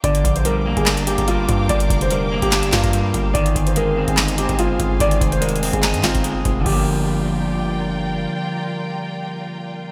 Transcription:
0.04 0.24 G1 loud
0.04 1.07 D3 loud
0.04 3.32 A#4 medium
0.04 0.34 D5 medium
0.04 6.62 F5 medium
0.04 3.32 G5 medium
0.04 3.32 D6 medium
0.04 kick loud
0.04 closed hi-hat medium
0.15 closed hi-hat medium
0.24 0.75 A#1 loud
0.24 kick loud
0.24 closed hi-hat medium
0.36 0.44 C5 medium
0.36 closed hi-hat medium
0.45 1.27 G3 loud
0.45 0.75 A#4 medium
0.45 closed hi-hat medium
0.66 1.06 A#3 medium
0.77 1.17 G1 loud
0.77 0.85 G#4 medium
0.77 kick medium
0.77 closed hi-hat medium
0.86 1.90 D4 loud
0.86 snare loud
0.86 clap medium
0.86 closed hi-hat medium
0.97 closed hi-hat medium
1.07 2.11 A#3 medium
1.07 1.24 G4 medium
1.07 closed hi-hat medium
1.18 1.47 G1 loud
1.18 kick loud
1.18 closed hi-hat medium
1.28 2.10 G3 medium
1.28 1.67 F4 medium
1.28 closed hi-hat medium
1.49 1.69 G2 loud
1.49 kick medium
1.49 closed hi-hat medium
1.69 1.89 G1 loud
1.69 2.73 D3 loud
1.69 1.99 D5 loud
1.69 kick loud
1.69 closed hi-hat medium
1.80 closed hi-hat medium
1.90 2.40 F1 loud
1.90 kick loud
1.90 closed hi-hat medium
2.01 2.10 C5 medium
2.01 closed hi-hat medium
2.11 2.93 G3 loud
2.11 2.40 A#4 medium
2.11 closed hi-hat medium
2.32 2.72 A#3 medium
2.42 2.72 G1 loud
2.42 2.71 G4 medium
2.42 kick medium
2.42 closed hi-hat medium
2.52 3.35 D4 loud
2.52 snare loud
2.52 clap medium
2.52 closed hi-hat medium
2.63 closed hi-hat medium
2.72 3.13 G2 loud
2.72 3.35 A#3 medium
2.72 3.31 F4 medium
2.72 kick loud
2.72 snare loud
2.72 clap medium
2.72 closed hi-hat medium
2.84 kick loud
2.84 closed hi-hat medium
2.93 3.35 G3 loud
2.93 closed hi-hat medium
3.14 3.34 G1 loud
3.14 kick loud
3.14 closed hi-hat medium
3.34 3.55 G1 loud
3.34 4.38 D#3 loud
3.34 6.63 C5 medium
3.34 3.64 D5 loud
3.34 6.63 G#5 medium
3.34 kick loud
3.34 closed hi-hat medium
3.46 closed hi-hat medium
3.55 4.06 G1 loud
3.55 kick loud
3.55 closed hi-hat medium
3.67 3.75 C5 medium
3.67 closed hi-hat medium
3.76 4.58 G#3 medium
3.76 4.06 A#4 medium
3.76 closed hi-hat medium
3.97 4.37 C4 medium
4.08 4.48 G1 loud
4.08 4.16 G#4 medium
4.08 kick medium
4.08 closed hi-hat medium
4.17 5.21 D#4 medium
4.17 snare loud
4.17 clap medium
4.17 closed hi-hat medium
4.28 closed hi-hat medium
4.38 5.42 C4 medium
4.38 4.55 G4 medium
4.38 closed hi-hat medium
4.49 4.78 G1 loud
4.49 kick loud
4.49 closed hi-hat medium
4.59 5.40 G#3 medium
4.59 4.98 F4 medium
4.59 closed hi-hat medium
4.80 5.00 G1 loud
4.80 kick medium
4.80 closed hi-hat medium
5.00 5.20 G1 loud
5.00 6.04 D#3 loud
5.00 5.30 D5 loud
5.00 kick loud
5.00 closed hi-hat medium
5.11 closed hi-hat medium
5.21 5.71 F1 loud
5.21 kick loud
5.21 closed hi-hat medium
5.32 5.40 C5 medium
5.32 closed hi-hat medium
5.41 6.23 G#3 medium
5.41 5.71 A#4 medium
5.41 closed hi-hat medium
5.49 closed hi-hat medium
5.56 closed hi-hat soft
5.62 6.03 C4 loud
5.62 open hi-hat medium
5.73 5.96 G1 loud
5.73 6.02 G#4 medium
5.73 kick medium
5.73 closed hi-hat medium
5.83 6.66 D#4 loud
5.83 snare loud
5.83 clap medium
5.83 closed hi-hat medium
5.94 6.03 G2 loud
5.94 closed hi-hat medium
6.04 6.44 G1 loud
6.04 6.66 C4 medium
6.04 6.62 F4 medium
6.04 kick loud
6.04 snare loud
6.04 clap medium
6.04 closed hi-hat medium
6.15 kick loud
6.15 closed hi-hat medium
6.24 6.66 G#3 medium
6.24 closed hi-hat medium
6.45 6.65 F1 loud
6.45 kick medium
6.45 closed hi-hat medium
6.60 9.92 D3 medium
6.64 8.27 G1 loud
6.64 9.92 F3 medium
6.64 9.92 F4 medium
6.64 7.86 G4 medium
6.64 9.92 A#4 medium
6.64 9.92 D5 medium
6.64 9.92 G5 medium
6.64 kick loud
6.64 crash medium
6.68 9.92 G3 medium
6.72 9.92 A#3 loud

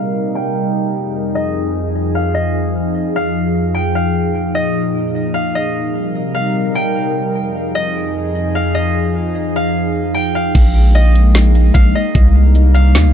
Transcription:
0.00 0.93 C3 medium
0.00 0.93 G3 medium
0.00 4.11 D#4 medium
0.00 0.93 A#4 medium
0.00 0.94 D#5 medium
0.00 1.61 F5 medium
0.35 1.91 G5 medium
0.95 4.12 F2 medium
0.95 5.71 F3 medium
0.95 5.71 G#4 medium
1.35 2.34 D#5 medium
2.15 3.15 F5 medium
2.35 4.13 D#5 medium
3.16 3.95 F5 medium
3.74 5.30 G5 medium
3.95 5.34 F5 medium
4.15 5.73 A#2 medium
4.15 5.73 D#4 medium
4.55 5.55 D#5 medium
5.34 6.34 F5 medium
5.55 7.34 D#5 medium
5.75 7.33 C3 medium
5.75 7.33 G3 medium
5.75 7.33 D#4 medium
5.75 7.34 A#4 medium
6.35 8.01 F5 medium
6.75 8.31 G5 medium
7.35 10.52 F2 medium
7.35 10.52 F3 medium
7.35 10.52 D#4 medium
7.35 10.52 G#4 medium
7.75 8.74 D#5 medium
8.55 9.56 F5 medium
8.75 10.53 D#5 medium
9.56 10.35 F5 medium
10.14 11.70 G5 medium
10.35 11.74 F5 medium
10.55 11.71 A#1 loud
10.55 12.14 G#3 medium
10.55 12.13 A#3 medium
10.55 13.13 D#4 medium
10.55 kick loud
10.55 closed hi-hat medium
10.55 crash medium
10.95 11.95 D#5 medium
10.95 closed hi-hat medium
11.15 closed hi-hat medium
11.35 snare loud
11.35 closed hi-hat medium
11.55 closed hi-hat medium
11.74 11.94 A#1 loud
11.74 12.74 F5 medium
11.74 kick medium
11.74 closed hi-hat medium
11.95 13.13 D#5 medium
12.15 12.96 C2 loud
12.15 13.13 C3 medium
12.15 13.13 G3 medium
12.15 13.13 A#3 medium
12.15 kick loud
12.15 closed hi-hat medium
12.55 closed hi-hat medium
12.74 13.13 F5 medium
12.74 closed hi-hat medium
12.95 13.06 D#2 loud
12.95 snare loud
12.95 closed hi-hat medium
13.05 13.13 C2 loud

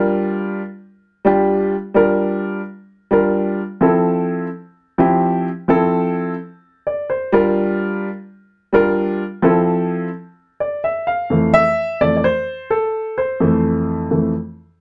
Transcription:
0.00 0.60 G3 medium
0.00 0.60 D4 medium
0.00 0.61 F4 medium
0.00 0.61 A#4 medium
1.25 1.73 G3 medium
1.25 1.74 D4 medium
1.25 1.74 F4 medium
1.25 1.74 G4 medium
1.94 2.59 G3 medium
1.94 2.60 D4 medium
1.94 2.60 F4 medium
1.94 2.60 A#4 medium
3.11 3.60 G3 medium
3.11 3.60 D4 medium
3.11 3.60 F4 medium
3.11 3.61 A#4 medium
3.81 4.46 F3 medium
3.81 4.46 C4 medium
3.81 4.46 E4 medium
3.81 4.47 A4 medium
4.98 5.47 F3 medium
4.98 5.47 C4 medium
4.98 5.47 E4 medium
4.98 5.48 G4 medium
5.68 6.33 F3 medium
5.68 6.33 C4 medium
5.68 6.34 E4 medium
5.68 6.34 A4 medium
6.87 7.09 D5 medium
7.10 7.54 C5 medium
7.32 8.07 G3 loud
7.32 8.08 D4 medium
7.32 8.08 F4 medium
7.32 8.08 A#4 medium
8.73 9.21 G3 medium
8.73 9.22 D4 medium
8.73 9.22 F4 medium
8.73 9.22 A#4 loud
9.42 10.07 F3 medium
9.42 10.07 C4 medium
9.42 10.08 E4 medium
9.42 10.08 A4 medium
10.60 10.82 D5 medium
10.84 11.06 E5 medium
11.07 11.51 F5 medium
11.30 11.61 F2 medium
11.30 11.61 E3 soft
11.30 11.62 A3 medium
11.54 12.02 E5 loud
12.01 12.21 F2 soft
12.01 12.22 E3 soft
12.01 12.22 A3 medium
12.01 12.15 D5 medium
12.17 12.24 D5 medium
12.24 12.72 C5 medium
12.70 13.18 A4 medium
13.18 13.61 C5 medium
13.40 14.09 F2 medium
13.40 14.09 E3 medium
13.40 14.10 A3 medium
14.11 14.32 F2 soft
14.11 14.32 E3 soft
14.11 14.32 A3 soft

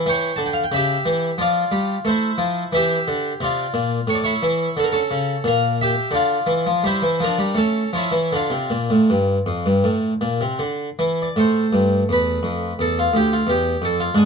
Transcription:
0.06 0.30 E3 medium
0.06 0.37 C#5 medium
0.06 0.39 G5 loud
0.36 0.62 D3 medium
0.36 0.46 A5 medium
0.46 0.55 G5 medium
0.53 0.63 F5 medium
0.64 0.73 G5 medium
0.72 0.96 C#3 medium
0.72 1.40 E5 loud
0.76 1.37 G4 medium
1.06 1.29 E3 medium
1.38 1.62 F3 medium
1.38 2.03 F4 medium
1.38 1.97 D5 loud
1.72 1.96 G3 medium
2.05 2.29 A3 medium
2.05 2.74 C5 medium
2.09 2.71 E4 medium
2.38 2.63 F3 medium
2.72 2.97 E3 medium
2.72 3.38 G4 medium
2.72 3.31 E5 loud
3.08 3.32 D3 medium
3.40 3.65 C3 medium
3.40 4.06 F4 medium
3.40 3.99 D5 medium
3.74 3.98 A#2 medium
4.07 4.32 A2 medium
4.07 4.16 C#5 medium
4.15 4.22 D5 medium
4.24 4.74 E4 medium
4.24 4.77 C#5 medium
4.43 4.67 E3 medium
4.77 5.01 D3 medium
4.77 4.84 A4 medium
4.84 4.90 A#4 medium
4.92 5.42 C#4 medium
4.92 5.45 A4 medium
5.11 5.35 C#3 medium
5.44 5.93 A#2 medium
5.44 5.77 A#4 medium
5.44 5.74 F5 loud
5.81 6.12 G4 medium
5.81 6.09 E5 medium
6.11 6.37 D3 medium
6.11 6.81 F4 medium
6.11 6.84 D5 medium
6.47 6.64 E3 medium
6.66 6.83 F3 medium
6.83 7.00 G3 medium
6.83 7.18 E4 medium
6.83 7.21 C5 medium
7.02 7.19 E3 medium
7.20 7.37 F3 medium
7.20 7.58 A#4 medium
7.25 7.56 D4 medium
7.38 7.55 G3 medium
7.55 7.82 A3 medium
7.55 7.92 C#4 medium
7.55 7.89 A4 medium
7.93 8.11 F3 medium
7.93 8.33 C#5 medium
7.97 8.31 E4 medium
8.12 8.31 E3 medium
8.32 8.51 D3 medium
8.32 10.98 F4 medium
8.32 11.01 D5 medium
8.50 8.69 C3 medium
8.70 8.89 A#2 medium
8.90 9.08 A2 medium
9.10 9.37 G2 medium
9.46 9.65 F2 medium
9.66 9.84 G2 medium
9.84 10.12 A2 medium
10.21 10.40 A#2 medium
10.41 10.60 C3 medium
10.59 10.88 D3 medium
10.99 11.27 E3 medium
11.22 11.39 D5 medium
11.36 11.66 A2 soft
11.36 14.10 A3 soft
11.36 12.00 C5 medium
11.73 12.02 G2 soft
12.09 12.38 E2 soft
12.09 12.81 B4 medium
12.43 12.71 F2 soft
12.79 13.07 E2 soft
12.79 12.97 A4 medium
12.99 13.15 F4 medium
13.14 13.41 D2 soft
13.14 13.32 G4 medium
13.33 13.49 F4 medium
13.47 13.74 E2 soft
13.47 13.82 G4 medium
13.82 14.08 F2 soft
13.82 14.00 A4 medium
14.00 14.16 F4 medium
14.15 14.25 G#2 medium
14.15 14.25 D4 soft
14.15 14.25 G#4 medium

